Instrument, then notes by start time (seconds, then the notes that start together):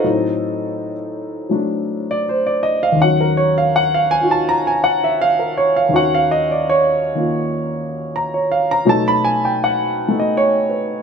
grand piano
Already playing: A4 C5 D#5
0.04 A2 F#3 C4 D#4
1.49 F#3 A3 D4
2.11 D5
2.29 C5
2.47 D5
2.63 D#5
2.83 F5
2.92 D#2
2.96 D#3 C#4
3.02 F#3 F#5
3.21 A#4
3.37 C#5
3.58 F5
3.76 F#5
3.94 F5
4.11 G#5
4.21 D#4 F4 F#4
4.31 A5
4.49 A#5
4.67 G#5
4.84 F#5
5.04 E5
5.21 F5
5.39 A#4
5.57 C#5
5.76 F5
5.89 D#2 D#3 C#4
5.94 F#4 F#5
6.15 F5
6.31 D#5
6.51 D5
6.69 C#5
7.15 D#3 A#3 F4
8.16 A#5
8.34 C#5
8.52 F5
8.71 A#5
8.85 B2 F#3 A3 D#4
8.89 A5
9.08 B5
9.24 G#5
9.45 G5
9.64 F#5
10.08 A3 B3 D#4
10.20 D#5
10.37 C#5
10.69 B4